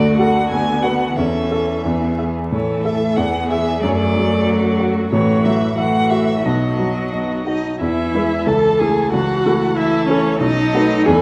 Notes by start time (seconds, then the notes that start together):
Already playing: D2 D3 A3 F#4 D5
0.17 F#4 A4 F#5
0.50 D2 B3 G#5
0.82 F#4 B4 F#5
1.16 E2 E3 C#4 A4 E5
1.51 A4 E5
1.84 E2 B3 G#4
2.18 G#4 E5
2.51 A2 A3 A4 C#5
2.84 A4 E5
3.16 E2 B3 G#4 F#5
3.50 G#4 E5
3.82 F#2 F#3 A3 D5
3.89 C#5
3.95 D5
4.16 F#3
4.47 F#4 D5
4.80 F#4
5.11 A1 E3 A3 F#4 C#5
5.45 F#3 E5
5.77 E3 A3 F#4 E5 F#5
6.10 F#4 E5
6.44 B1 F#3 B3 F#4 D#5
6.79 F#3
7.13 B3 D#5
7.47 D#4 F#4 D#5
7.79 E2 E3 E4 E5 G#5
8.15 G#3 E4 B4
8.45 C#2 E3 A4 A5
8.79 A3 E4 G#4 A4 G#5
9.12 C#2 E3 F#4 F#5 A5
9.46 A3 E4 A4
9.77 E3 E4 E5 A5
10.08 A3 C#4 E4 A4 C#5
10.40 B1 F#3 D#4 D#5 A5
10.74 A3 F#4 B4
11.06 E2 E3 G#4 G#5 B5
11.14 A4